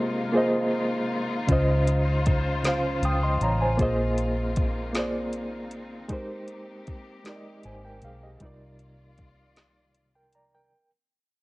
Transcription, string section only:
0.00 1.45 C3 medium
0.00 6.06 G#3 medium
0.00 1.44 A#3 medium
0.00 3.75 D#4 medium
0.00 6.06 F4 medium
1.48 3.77 C#3 medium
1.48 3.77 C5 medium
3.79 6.08 A#3 medium
3.79 10.67 C4 medium
3.79 8.37 D#4 medium
6.10 8.39 G#3 medium
6.10 10.68 A#3 medium
6.10 8.39 G4 medium
8.41 10.69 D#3 medium
8.41 10.69 F4 loud
8.41 10.69 D5 medium

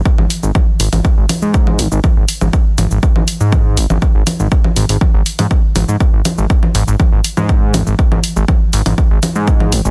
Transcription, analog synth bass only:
0.18 0.26 G#1 medium
0.43 0.51 G#1 medium
0.80 0.88 G#1 loud
0.93 1.01 G#1 medium
1.17 1.25 G#1 medium
1.42 1.80 G#2 medium
1.79 1.88 G#1 medium
1.92 2.00 G#1 medium
2.17 2.25 G#1 medium
2.41 2.49 G#1 medium
2.78 2.87 G#1 medium
2.91 2.99 G#1 medium
3.16 3.24 G#1 medium
3.41 3.79 G#2 medium
3.77 3.86 G#1 medium
3.90 3.98 G#1 medium
4.15 4.23 G#1 medium
4.40 4.48 G#1 medium
4.77 4.85 G#1 loud
4.89 4.97 G#1 medium
5.14 5.22 G#1 medium
5.39 5.47 G#2 medium
5.76 5.84 G#1 medium
5.88 5.97 G#2 medium
6.13 6.21 G#1 medium
6.38 6.46 G#1 medium
6.75 6.83 G#1 loud
6.88 6.96 G#1 medium
7.12 7.21 G#1 medium
7.37 7.76 G#2 medium
7.74 7.83 G#1 loud
7.87 7.95 G#1 medium
8.12 8.20 G#1 medium
8.36 8.44 G#1 medium
8.73 8.82 G#1 loud
8.86 8.94 G#1 medium
9.11 9.19 G#1 medium
9.36 9.74 G#2 medium
9.72 9.81 G#1 loud
9.85 9.91 G#1 medium

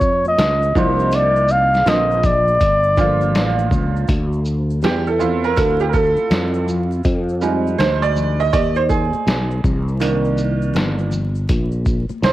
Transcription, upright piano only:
0.75 1.71 F3 medium
0.75 1.71 A#3 medium
0.75 1.70 D4 medium
0.75 1.71 D#4 medium
1.86 2.15 D3 medium
1.86 2.16 F3 medium
1.86 2.16 A#3 medium
1.86 2.16 C4 medium
2.98 4.03 D3 medium
2.98 4.04 F3 medium
2.98 4.04 A#3 medium
2.98 4.04 F4 medium
4.84 5.08 G4 medium
5.07 5.45 A4 medium
5.19 7.01 C4 soft
5.19 7.01 E4 medium
5.19 7.00 F4 medium
5.44 5.57 A#4 medium
5.56 5.79 A4 medium
5.80 5.84 G4 medium
5.89 5.94 A#4 medium
5.93 6.64 A4 loud
7.41 8.49 G3 medium
7.41 8.49 G#3 soft
7.41 8.49 D#4 medium
7.78 8.03 C5 medium
8.02 8.41 D5 medium
8.40 8.53 D#5 medium
8.53 8.75 D5 medium
8.76 8.81 C5 medium
8.89 9.60 G#4 medium
10.00 11.08 D#3 medium
10.00 11.08 A#3 soft
10.00 11.08 D4 medium
12.24 12.33 C5 medium

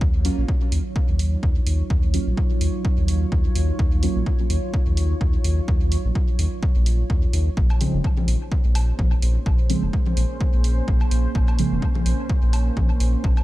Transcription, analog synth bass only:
0.01 0.30 D#2 medium
0.38 0.45 A#1 medium
0.72 0.80 D#2 medium
1.09 1.37 D#2 medium
1.43 1.59 D#2 medium
1.67 1.83 D#2 medium
1.90 2.19 D#2 medium
2.27 2.34 A#1 medium
2.61 2.69 D#2 medium
2.98 3.26 D#2 medium
3.32 3.48 D#2 medium
3.56 3.72 D#2 medium
3.79 4.08 D#2 loud
4.16 4.23 A#1 medium
4.50 4.58 D#2 medium
4.87 5.15 D#2 medium
5.21 5.37 D#2 medium
5.44 5.61 D#2 medium
5.68 5.97 D#2 loud
6.05 6.12 A#1 medium
6.39 6.47 D#2 medium
6.76 7.04 A#1 medium
7.10 7.26 D#2 medium
7.33 7.49 D#2 loud
7.57 7.86 A#1 loud
7.94 8.01 F1 medium
8.28 8.36 A#1 medium
8.65 8.93 A#1 medium
8.99 9.15 A#1 medium
9.22 9.38 A#1 medium
9.46 9.75 A#1 loud
9.83 9.90 F1 medium
10.17 10.25 A#1 medium
10.54 10.82 A#1 medium
10.88 11.04 A#1 medium
11.11 11.27 A#1 medium
11.35 11.64 A#1 loud
11.72 11.79 F1 medium
12.06 12.14 A#1 medium
12.43 12.71 A#1 medium
12.77 12.93 A#1 medium
13.00 13.16 A#1 medium
13.24 13.44 A#1 loud

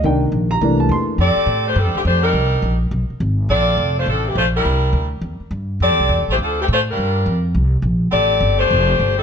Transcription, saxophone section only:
1.20 1.63 C4 medium
1.20 1.63 G4 medium
1.20 1.63 A4 loud
1.20 1.64 D5 loud
1.67 1.78 A3 medium
1.67 1.77 D4 medium
1.67 1.78 G4 medium
1.67 1.78 C5 loud
1.77 1.95 G3 medium
1.77 1.95 C4 medium
1.77 1.96 D4 medium
1.77 1.96 A4 loud
1.96 2.01 D3 medium
1.96 2.01 A3 medium
1.96 2.01 C4 medium
1.96 2.01 G4 medium
2.06 2.23 A3 medium
2.06 2.22 D4 medium
2.06 2.23 G4 medium
2.06 2.23 C5 loud
2.23 2.77 G3 medium
2.23 2.77 D4 medium
2.23 2.77 D#4 medium
2.23 2.77 A#4 loud
3.50 3.94 C4 loud
3.50 3.94 F4 loud
3.50 3.94 A4 loud
3.50 3.94 D5 loud
3.99 4.09 A3 medium
3.99 4.08 D4 medium
3.99 4.09 F4 medium
3.99 4.09 C5 loud
4.09 4.25 F3 medium
4.09 4.25 C4 medium
4.09 4.25 D4 medium
4.09 4.25 A4 loud
4.27 4.37 E3 medium
4.27 4.37 A3 medium
4.27 4.38 C4 medium
4.27 4.37 G4 medium
4.38 4.46 A3 medium
4.38 4.46 D4 medium
4.38 4.46 F4 medium
4.38 4.46 C5 loud
4.56 5.09 G3 medium
4.56 5.09 D4 medium
4.56 5.09 E4 medium
4.56 5.09 A#4 medium
5.82 6.25 C4 medium
5.82 6.25 G4 loud
5.82 6.26 A4 loud
5.82 6.26 D5 loud
6.31 6.35 A3 medium
6.31 6.36 E4 medium
6.31 6.36 G4 medium
6.31 6.35 C5 loud
6.41 6.57 F3 medium
6.41 6.57 C4 medium
6.41 6.58 D4 medium
6.41 6.58 A4 medium
6.61 6.65 E3 medium
6.61 6.65 A3 medium
6.61 6.65 C4 medium
6.61 6.65 G4 medium
6.72 6.80 A3 medium
6.72 6.80 D4 medium
6.72 6.79 F4 medium
6.72 6.80 C5 loud
6.90 7.42 G3 medium
6.90 7.42 D4 medium
6.90 7.42 F4 medium
6.90 7.42 A#4 medium
8.11 8.56 C4 loud
8.11 8.56 G4 loud
8.11 8.55 A4 loud
8.11 8.56 D5 loud
8.59 9.13 A3 loud
8.59 9.13 D4 loud
8.59 9.13 G4 loud
8.59 9.13 C5 loud
9.17 9.23 G3 medium
9.17 9.23 C4 medium
9.17 9.23 D#4 medium
9.17 9.23 A4 loud

